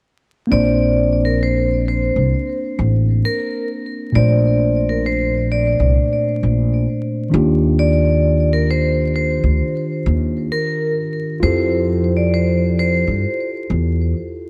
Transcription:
0.47 4.09 A#3 medium
0.47 4.09 C4 medium
0.47 4.10 D4 medium
0.52 2.12 A#1 loud
0.52 4.11 C5 medium
0.52 1.21 D5 loud
1.25 1.40 A#4 medium
1.43 1.84 C5 medium
1.88 2.57 C5 medium
2.16 2.32 C2 medium
2.79 3.21 A1 medium
3.25 3.66 A#4 medium
4.12 5.75 A#1 loud
4.12 7.28 A#2 medium
4.12 7.28 A3 medium
4.12 7.29 D4 medium
4.12 4.84 D5 medium
4.18 7.30 C5 medium
4.89 5.04 A#4 medium
5.06 5.47 C5 medium
5.52 6.21 D5 medium
5.80 5.96 C2 medium
6.43 6.85 A#1 medium
7.30 9.39 D#2 loud
7.30 10.91 D#3 medium
7.30 10.92 D4 medium
7.30 10.93 F4 medium
7.36 10.94 G4 medium
7.79 8.48 D5 medium
8.53 8.68 A#4 medium
8.71 9.11 C5 medium
9.16 9.85 C5 medium
9.44 9.59 D2 medium
10.06 10.49 D#2 loud
10.52 10.93 A#4 medium
11.40 13.03 F2 loud
11.40 14.50 E4 medium
11.40 14.50 F4 medium
11.40 14.50 G4 medium
11.40 12.12 C5 loud
11.46 14.50 A4 medium
12.17 12.32 D5 medium
12.34 12.75 C5 medium
12.79 13.48 C5 medium
13.07 13.23 G2 medium
13.70 14.12 E2 loud

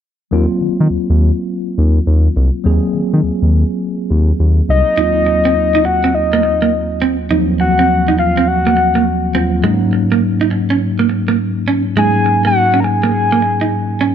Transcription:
0.31 0.46 D#2 loud
0.31 2.60 F#3 medium
0.31 2.61 A#3 medium
0.31 2.61 C4 medium
0.31 2.62 F4 medium
0.61 0.69 D#3 soft
0.80 0.88 D#3 loud
0.90 0.98 D#2 soft
1.10 1.31 D#2 medium
1.78 1.99 D#2 loud
2.07 2.28 D#2 medium
2.36 2.50 C2 medium
2.64 2.79 D#2 loud
2.64 4.93 F#3 medium
2.64 4.94 A#3 medium
2.64 4.94 C4 medium
2.64 4.94 G#4 medium
2.94 3.02 D#3 soft
3.13 3.21 D#3 loud
3.23 3.31 D#2 medium
3.42 3.64 D#2 medium
4.10 4.32 D#2 loud
4.40 4.61 D#2 medium
4.69 4.83 C2 medium
4.69 5.87 D#5 loud
4.97 7.26 D#2 medium
4.97 7.27 F#3 medium
4.97 7.27 A#3 medium
4.97 7.27 C4 medium
4.97 5.12 D#4 loud
4.97 7.28 F4 medium
5.26 muted clean electric guitar stroke soft
5.45 5.53 C4 medium
5.75 5.82 D#4 medium
5.85 6.16 F#5 loud
5.85 muted clean electric guitar stroke soft
6.04 6.11 C4 medium
6.15 7.02 D#5 medium
6.33 6.41 A#3 medium
6.43 muted clean electric guitar stroke soft
6.62 6.70 A#3 medium
7.02 7.16 C4 medium
7.30 9.30 D#2 medium
7.30 9.31 F3 medium
7.30 9.30 F#3 medium
7.30 9.31 A#3 medium
7.30 9.31 C4 medium
7.30 7.45 D#4 medium
7.60 8.14 F#5 loud
7.60 muted clean electric guitar stroke soft
7.79 7.86 C4 medium
8.08 8.16 D#4 medium
8.19 8.49 F5 loud
8.19 muted clean electric guitar stroke soft
8.37 8.45 C4 medium
8.48 9.35 F#5 loud
8.67 8.74 A#3 medium
8.77 muted clean electric guitar stroke soft
8.95 9.03 A#3 medium
9.34 9.64 D#2 medium
9.34 9.62 F#3 soft
9.34 9.63 A#3 medium
9.34 9.49 C4 medium
9.34 9.64 C4 soft
9.34 9.64 F4 medium
9.63 11.92 G#2 medium
9.63 11.93 F#3 medium
9.63 9.78 G#3 medium
9.63 11.93 A#3 medium
9.63 11.93 C#4 medium
9.63 11.93 D#4 medium
9.93 muted clean electric guitar stroke soft
10.12 10.19 A#3 medium
10.41 10.48 D#4 medium
10.51 muted clean electric guitar stroke soft
10.70 10.78 C#4 medium
10.99 11.07 A#3 medium
11.09 muted clean electric guitar stroke soft
11.28 11.36 A#3 medium
11.68 11.82 C#4 medium
11.96 14.15 G#2 medium
11.96 14.15 F#3 medium
11.96 12.11 G#3 loud
11.96 14.15 A#3 medium
11.96 14.15 C#4 medium
11.96 14.15 D#4 medium
11.96 12.42 G#5 loud
12.26 muted clean electric guitar stroke soft
12.45 12.52 A#3 medium
12.45 12.82 F#5 loud
12.74 12.81 C#4 medium
12.80 14.00 G#5 loud
12.80 12.85 A#5 medium
12.84 muted clean electric guitar stroke soft
13.03 13.11 A#3 medium
13.32 13.40 A#3 medium
13.42 muted clean electric guitar stroke soft
13.61 13.69 D#4 medium
14.01 14.15 C#4 medium

